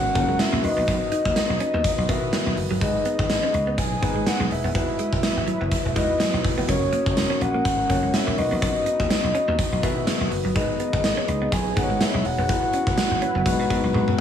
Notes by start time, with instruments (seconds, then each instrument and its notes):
Already playing: tine electric piano C#4 D#4 F#4 A#4 B4, soft synth lead F#5
0.15 slap bass F#1, clean electric guitar A#3, tine electric piano C#4 F#4 A#4, soft synth lead F#5, kick, closed hi-hat
0.29 clean electric guitar G#3
0.39 soft synth lead E5, snare, closed hi-hat, tambourine
0.53 slap bass A#1, clean electric guitar A#3
0.63 slap bass B1, tine electric piano D#4 F#4 B4, soft synth lead D#5, muted clean electric guitar stroke, open hi-hat
0.77 slap bass A#1, clean electric guitar B3
0.88 slap bass B1, clean electric guitar B3, kick, closed hi-hat
1.01 muted clean electric guitar stroke
1.12 clean electric guitar D#4, closed hi-hat
1.25 slap bass D#2, kick
1.36 muted clean electric guitar stroke, snare, closed hi-hat, tambourine
1.50 slap bass B1
1.60 clean electric guitar C#4, closed hi-hat
1.74 slap bass D#2, clean electric guitar B3
1.84 kick, closed hi-hat
1.98 slap bass B1
2.08 slap bass B2, tine electric piano D#3 F#4 A#4, clean electric guitar B3, soft synth lead E5, kick, closed hi-hat
2.15 tine electric piano B4
2.33 clean electric guitar G#3, snare, closed hi-hat, tambourine
2.46 slap bass B1
2.57 slap bass F#1, muted clean electric guitar stroke, open hi-hat
2.70 slap bass G1, clean electric guitar F#3
2.81 slap bass G#1, clean electric guitar G#3, tine electric piano D#4 G#4 B4, soft synth lead D#5, kick, closed hi-hat
3.05 clean electric guitar B3, closed hi-hat
3.19 slap bass G#1, muted clean electric guitar stroke, kick
3.30 snare, closed hi-hat, tambourine
3.43 clean electric guitar C#4
3.54 slap bass C#2, muted clean electric guitar stroke, closed hi-hat
3.67 clean electric guitar B3
3.78 slap bass B1, soft synth lead G#5, muted clean electric guitar stroke, kick, closed hi-hat
4.02 slap bass G#1, clean electric guitar B3, tine electric piano D#4 G#4 B4, kick, closed hi-hat
4.16 clean electric guitar G#3
4.26 soft synth lead F#5, snare, closed hi-hat, tambourine
4.40 slap bass B1, clean electric guitar G#3
4.51 slap bass E1, soft synth lead E5, muted clean electric guitar stroke, open hi-hat
4.64 slap bass D#1, clean electric guitar B3
4.74 slap bass E1, clean electric guitar B3, tine electric piano E4 F#4 B4, kick, closed hi-hat
4.88 muted clean electric guitar stroke
4.99 clean electric guitar G#3, closed hi-hat
5.13 slap bass E1, kick
5.23 analog polysynth F#3 E4 B4, muted clean electric guitar stroke, snare, closed hi-hat, tambourine
5.37 slap bass G#1
5.47 analog polysynth F#3 E4 B4, clean electric guitar F#3, closed hi-hat
5.61 slap bass F#1, clean electric guitar B3
5.72 kick, closed hi-hat
5.85 slap bass E1
5.96 slap bass E2, clean electric guitar G#3, tine electric piano E4 F#4 B4, soft synth lead D#5, kick, closed hi-hat
6.20 clean electric guitar F#3, snare, closed hi-hat, tambourine
6.33 slap bass B1
6.44 slap bass E1, muted clean electric guitar stroke, kick, open hi-hat
6.58 slap bass F1, clean electric guitar B3
6.68 slap bass F#1, clean electric guitar F#3, tine electric piano C#4 F#4 A#4, glass harmonica C#4 F#4 A#4, soft synth lead C#5, kick, closed hi-hat
6.93 clean electric guitar A#3, closed hi-hat
7.06 slap bass F#1, muted clean electric guitar stroke, kick
7.17 snare, closed hi-hat, tambourine
7.30 clean electric guitar C#4
7.41 slap bass A#1, soft synth lead F#5, muted clean electric guitar stroke, closed hi-hat
7.54 clean electric guitar A#3
7.65 slap bass G#1, muted clean electric guitar stroke, kick, closed hi-hat
7.89 slap bass F#1, clean electric guitar A#3, tine electric piano C#4 F#4 C#5, kick, closed hi-hat
8.03 clean electric guitar G#3
8.14 soft synth lead E5, snare, closed hi-hat, tambourine
8.27 slap bass A#1, clean electric guitar A#3
8.38 slap bass B1, glass harmonica B3 B4, tine electric piano D#4 F#4 B4, soft synth lead D#5, muted clean electric guitar stroke, open hi-hat
8.51 slap bass A#1, clean electric guitar B3
8.62 slap bass B1, clean electric guitar B3, kick, closed hi-hat
8.75 muted clean electric guitar stroke
8.86 clean electric guitar D#4, closed hi-hat
9.00 slap bass D#2, kick
9.10 muted clean electric guitar stroke, snare, closed hi-hat, tambourine
9.24 slap bass B1
9.35 clean electric guitar C#4, closed hi-hat
9.48 slap bass D#2, clean electric guitar B3
9.59 kick, closed hi-hat
9.72 slap bass B1
9.83 slap bass B2, tine electric piano D#3 F#4 B4, clean electric guitar B3, soft synth lead E5, kick, closed hi-hat
10.07 clean electric guitar G#3, snare, closed hi-hat, tambourine
10.21 slap bass B1
10.31 slap bass F#1, muted clean electric guitar stroke, open hi-hat
10.45 slap bass G1, clean electric guitar F#3
10.55 slap bass G#1, clean electric guitar G#3, tine electric piano D#4 G#4 B4, glass harmonica G#4, soft synth lead D#5, kick, closed hi-hat
10.80 clean electric guitar B3, closed hi-hat
10.93 slap bass G#1, muted clean electric guitar stroke, kick
11.04 snare, closed hi-hat, tambourine
11.17 clean electric guitar C#4
11.28 slap bass C#2, muted clean electric guitar stroke, closed hi-hat
11.42 clean electric guitar B3
11.52 slap bass B1, soft synth lead G#5, muted clean electric guitar stroke, kick, closed hi-hat
11.76 slap bass G#1, clean electric guitar B3, tine electric piano D#4 G#4 B4, soft synth lead F#5, kick, closed hi-hat
11.83 tine electric piano C#5
11.90 clean electric guitar G#3
12.01 soft synth lead E5, snare, closed hi-hat, tambourine
12.14 slap bass B1, clean electric guitar G#3
12.25 slap bass E1, soft synth lead F#5, muted clean electric guitar stroke, open hi-hat
12.38 slap bass D#1, clean electric guitar B3
12.49 slap bass E1, clean electric guitar B3, tine electric piano E4 F#4 B4, glass harmonica E4 F#4 B4, kick, closed hi-hat
12.63 muted clean electric guitar stroke
12.73 clean electric guitar C#4, closed hi-hat
12.87 slap bass E1, kick
12.98 analog polysynth F#3 E4 B4, muted clean electric guitar stroke, snare, closed hi-hat, tambourine
13.11 slap bass G#1
13.22 analog polysynth F#3 E4 B4, clean electric guitar C#4, closed hi-hat
13.35 slap bass F#1, clean electric guitar B3
13.45 slap bass B1, tine electric piano G#3 B3 D#4 F#4 B4, glass harmonica G#3 B3 D#4 F#4, kick, closed hi-hat
13.59 slap bass B2
13.70 slap bass G#2, tine electric piano G#3 B3 D#4 F#4 B4, clean electric guitar B3, kick, closed hi-hat
13.83 slap bass B1
13.94 slap bass B1, clean electric guitar G#3, high tom
14.08 mid tom